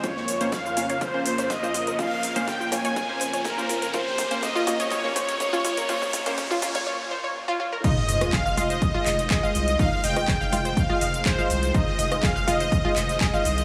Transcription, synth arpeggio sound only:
X:1
M:4/4
L:1/16
Q:1/4=123
K:Fm
V:1 name="Synth arpeggio sound"
F z4 F F d d z c d z F F B | F z4 F F d d z c d z F F B | F z4 F F d d z c d z F F B | F z4 F F d d z c d z F F B |
E z e z A f F c z F e z A f z2 | E z e z A f F c z F e z A f z2 | E z e z A f F c z F e z A f z2 |]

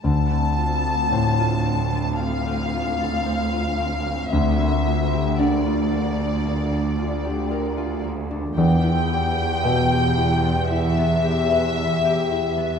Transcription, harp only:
X:1
M:4/4
L:1/16
Q:1/4=56
K:Dm
V:1 name="Harp"
D, C F A c F C A, C A, F A c F C A, | D, B, F G B F B, D B, D F G B F B, D | E, E G =B e G E =B, E B, G B e G E B, |]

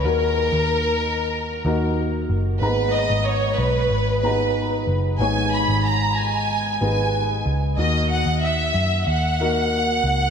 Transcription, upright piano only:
X:1
M:4/4
L:1/8
Q:1/4=93
K:G#m
V:1 name="Upright piano"
[D,A,DFA]3 z2 [A,DFA]2 z | [G,,A,B,DGa]3 z2 [B,DGa]2 z | [G,,B,DGc]3 z2 [B,DGB]2 z | [D,A,FA]3 z2 [A,DFA]2 z |]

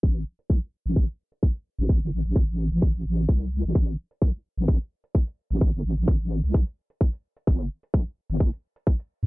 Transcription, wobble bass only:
X:1
M:4/4
L:1/16
Q:"Swing 16ths" 1/4=129
K:Am
V:1 name="Wobble bass" clef=bass
A,,,2 z2 C,, z2 A,,,2 z6 A,,,- | A,,, G,,, A,,, A,,,4 A,,,2 A,,, A,,,2 z3 A,,, | A,,,2 z2 C,, z2 A,,,2 z6 A,,,- | A,,, G,,, A,,, A,,,4 C,,2 z6 z |
G,,,2 z2 B,,, z2 G,,,2 z6 G,, |]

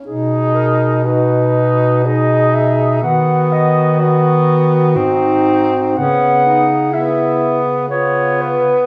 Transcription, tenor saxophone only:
X:1
M:3/4
L:1/8
Q:1/4=61
K:B
V:1 name="Tenor saxophone"
D2 D2 D2 | B,2 B,2 ^B,2 | B, z B,2 B,2 |]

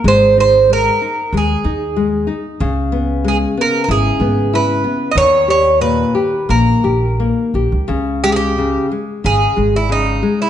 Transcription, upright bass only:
X:1
M:4/4
L:1/16
Q:1/4=92
K:C#dor
V:1 name="Upright bass" clef=bass
G,,,8 D,,2 D,,6 | C,,8 G,,,2 G,,,6 | D,,8 A,,,2 A,,,4 A,,, C,, | C,,8 G,,,2 G,,,6 |]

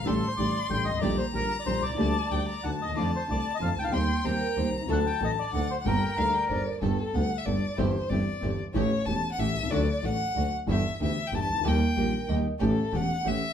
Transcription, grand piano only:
X:1
M:3/4
L:1/16
Q:1/4=186
K:Gm
V:1 name="Grand piano" clef=bass
[A,,,A,,D,G,A,G]2 z2 [A,,,A,,D,G,A,G]2 z2 [A,,,A,,D,G,A,G]2 z/2 G,,,/2 _A,,,/2 =A,,,/2 | [B,,,B,,D,G,B,G]2 z2 [B,,,B,,D,G,B,G]2 z2 [B,,,B,,D,G,B,G]2 z/2 =B,,,/2 C,,/2 ^C,,/2 | [D,,D,G,B,G]2 z2 [D,,D,G,B,G]2 z2 [D,,D,^F,A,^F]2 z/2 D,,/2 E,,/2 =E,,/2 | [F,,D,F,A,CF]2 z2 [C,,C,D,A,CF]2 z2 [F,,D,F,A,CF]2 z/2 C,,/2 ^C,,/2 D,,/2 |
[E,,E,G,CG]2 z2 [E,,E,G,CG]2 z2 [E,,E,G,CG]2 z/2 =B,,,/2 C,,/2 ^C,,/2 | [D,,D,^F,A,DA]2 z2 [A,,,A,,F,A,DA]2 z2 [D,,D,F,A,DA]2 z2 | [G,,,G,,G,B,DA]2 z2 [D,,D,G,B,DA]2 z2 [G,,,G,,G,B,DA]2 z2 | [K:G] [G,,,G,,G,B,DA]2 z2 [D,,D,G,B,DA]2 z2 [G,,,G,,G,B,DA]2 z2 |
[G,,,G,,E,G,CG]2 z2 [G,,,G,,E,G,CG]2 z2 [G,,,G,,E,G,CG]2 z2 | [A,,,A,,E,A,^CG]2 z2 [E,,,E,,E,A,CG]2 z2 [A,,,A,,E,A,CG]2 z/2 B,,,/2 =C,,/2 ^C,,/2 | [D,,D,F,A,DA]2 z2 [A,,,A,,F,A,DA]2 z2 [D,,D,F,A,DA]2 z2 | [G,,,G,,E,B,DG]2 z2 [D,,D,E,B,DG]2 z2 [G,,,G,,E,B,DG]2 z/2 C,,/2 ^C,,/2 D,,/2 |
[_E,,_E,G,_B,G]2 z2 [_B,,,_B,,E,G,B,G]2 z2 [E,,E,G,B,G]2 z2 | [A,,,A,,E,A,^CG]2 z2 [E,,,E,,E,A,CG]2 z2 [A,,,A,,E,A,CG]2 z2 |]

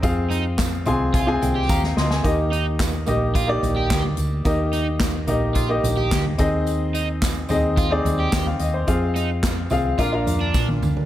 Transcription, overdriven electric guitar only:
X:1
M:4/4
L:1/16
Q:1/4=108
K:Eb
V:1 name="Overdriven electric guitar"
z2 E z4 z F z2 G2 z3 | z2 E z4 z F z2 G2 z3 | z2 E z4 z F z2 G2 z3 | z2 E z4 z F z2 G2 z3 |
z2 E z4 z F z2 D2 z3 |]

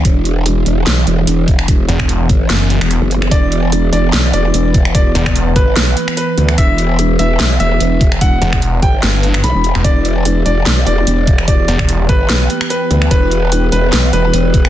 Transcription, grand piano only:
X:1
M:4/4
L:1/8
Q:"Swing 16ths" 1/4=147
K:Em
V:1 name="Grand piano"
z8 | z8 | d3 d2 d3 | d3 B3 B2 |
e3 e2 e3 | f3 g3 b2 | d3 d2 d3 | d3 B3 B2 |
B3 B2 B3 |]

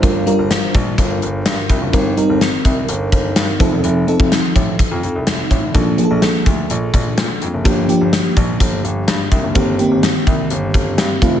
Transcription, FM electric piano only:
X:1
M:4/4
L:1/8
Q:1/4=126
K:Cdor
V:1 name="FM electric piano"
[G,DFBcf] [G,DFB]3 z4 | [G,CEB] [G,CEB]3 z3 [F,CEA]- | [F,CEA] [F,CEA]3 z4 | [F,B,DA] [F,B,D_A=A]3 z4 |
[F,B,DG] [F,B,DG]3 z4 | [E,B,CG] [E,B,CG]3 z3 [E,A,CF] |]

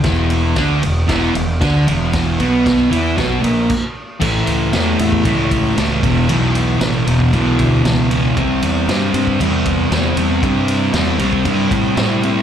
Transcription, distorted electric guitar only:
X:1
M:4/4
L:1/8
Q:1/4=116
K:Emix
V:1 name="Distorted electric guitar" clef=bass
[E,,E,]2 [D,D] E,, [E,,E,] E,, [D,D] [E,,E,]- | [E,,E,] [B,,B,]2 [E,E] [B,,B,] [_B,,_B,] z2 | [A,,E,A,]2 [A,,E,A,] [A,,E,A,] [A,,E,A,]2 [A,,E,A,] [E,,B,,E,] | [E,,B,,E,]2 [E,,B,,E,] [E,,B,,E,] [E,,B,,E,]2 [E,,B,,E,] [E,,B,,E,] |
[=C,=G,=C]2 [C,G,C] [C,G,C] [C,G,C]2 [C,G,C] [C,G,C] | [=C,=G,=C]2 [C,G,C] [C,G,C] [C,G,C]2 [C,G,C] [C,G,C] |]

